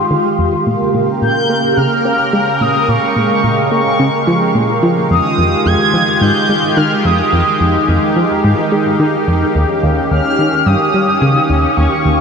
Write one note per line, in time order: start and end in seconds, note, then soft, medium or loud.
0.00 0.62 D#3 medium
0.00 0.62 G#3 medium
0.00 0.63 F4 medium
0.00 0.62 G4 medium
0.00 12.21 G4 medium
0.00 12.21 F5 medium
0.00 0.35 C6 medium
0.11 0.28 D#3 loud
0.39 0.56 F2 medium
0.67 0.77 A#2 medium
0.67 5.07 C#3 medium
0.67 2.86 A#3 medium
0.67 5.07 A#4 medium
0.94 1.11 A#2 medium
1.22 1.47 A#2 medium
1.22 1.78 G6 loud
1.50 1.60 A#3 medium
1.77 1.88 C#3 loud
1.77 2.62 F6 loud
2.05 2.31 C#4 medium
2.33 2.50 G#3 loud
2.61 2.78 A#2 medium
2.61 2.90 D#6 medium
2.89 2.99 A#2 medium
2.89 5.09 G#3 medium
2.89 3.72 C#6 loud
3.16 3.33 A#2 medium
3.44 3.70 A#2 medium
3.72 3.82 A#3 medium
3.72 4.79 C#6 medium
4.00 4.10 C#3 loud
4.27 4.53 F3 loud
4.55 4.81 A#2 medium
4.83 5.08 F3 loud
5.11 5.21 F2 medium
5.11 12.21 D#3 medium
5.11 9.51 G#3 medium
5.11 7.31 F4 medium
5.11 12.21 G4 medium
5.11 5.68 D#6 loud
5.38 5.55 F2 medium
5.66 5.76 F2 medium
5.66 6.23 G#6 loud
5.94 6.04 F3 medium
6.21 6.32 G#2 loud
6.21 6.78 G6 loud
6.49 6.75 G#3 medium
6.77 6.94 D#3 loud
6.77 7.06 F6 medium
7.05 7.22 F2 medium
7.05 7.88 D#6 medium
7.33 7.43 F2 medium
7.33 9.53 D#4 medium
7.61 7.78 F2 medium
7.88 7.99 F2 medium
8.16 8.27 F3 medium
8.44 8.54 G#2 loud
8.72 8.97 G#3 medium
9.00 9.17 D#3 loud
9.27 9.44 F2 medium
9.55 9.65 D#2 medium
9.55 12.21 C#4 medium
9.83 10.00 D#2 medium
10.11 10.21 D#2 medium
10.11 10.68 F6 loud
10.39 10.49 D#3 medium
10.66 10.77 G2 loud
10.66 11.76 D#6 loud
10.94 11.20 G3 medium
11.22 11.39 C#3 loud
11.50 11.67 D#2 medium
11.77 11.88 D#2 medium
11.77 12.21 C#6 medium
12.05 12.21 D#2 medium